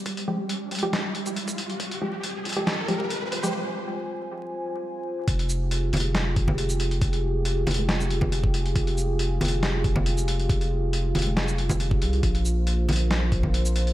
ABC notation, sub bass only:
X:1
M:4/4
L:1/8
Q:1/4=138
K:Fm
V:1 name="Sub bass" clef=bass
z8 | z8 | z8 | F,,,3 F,,,4- F,,, |
F,,,3 F,,,4- F,,, | F,,,3 F,,,4- F,,, | F,,,3 F,,,4 C,, | B,,,3 B,,,4- B,,, |]